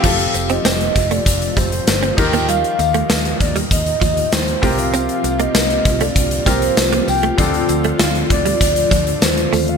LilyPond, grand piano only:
<<
  \new Staff \with { instrumentName = "Grand piano" } { \time 4/4 \key f \mixolydian \tempo 4 = 98 <c' f' g' a'>2.~ <c' f' g' a'>8 <ees' f' g' bes'>8~ | <ees' f' g' bes'>2.~ <ees' f' g' bes'>8 <c' f' g' bes'>8~ | <c' f' g' bes'>2~ <c' f' g' bes'>8 <c' f' g' bes'>4. | <c' d' f' a'>1 | }
  \new Staff \with { instrumentName = "Grand piano" } { \clef bass \time 4/4 \key f \mixolydian r2. r8 ees8~ | ees4 r2 r8 c8~ | c4 r2. | d4. r2 r8 | }
>>